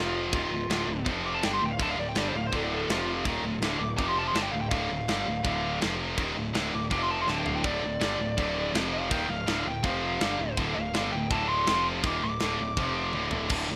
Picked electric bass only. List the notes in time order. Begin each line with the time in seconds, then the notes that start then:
Already playing: F1
0.33 D#1
0.48 D1
0.68 D1
0.87 D1
1.06 F1
1.44 G1
1.62 D1
1.79 D1
1.97 D1
2.15 G1
2.34 D1
2.53 D1
2.88 F1
3.26 D#1
3.41 D1
3.60 D1
3.79 D1
3.99 F1
4.34 G1
4.53 D1
4.71 D1
4.90 D1
5.09 G1
5.28 D1
5.44 D1
5.84 F1
6.18 D#1
6.37 D1
6.54 D1
6.73 D1
6.91 F1
7.28 D1
7.64 D1
7.84 D1
8.01 G1
8.19 D1
8.38 D1
8.74 F1
9.11 D#1
9.29 D1
9.47 D1
9.65 D1
9.84 F1
10.21 G1
10.39 D1
10.57 D1
10.76 D1
10.94 G1
11.13 D1
11.30 D1
11.67 F1
12.03 D#1
12.22 D1
12.42 D1
12.59 D1
12.77 F1
13.15 D1
13.50 D1
13.70 D1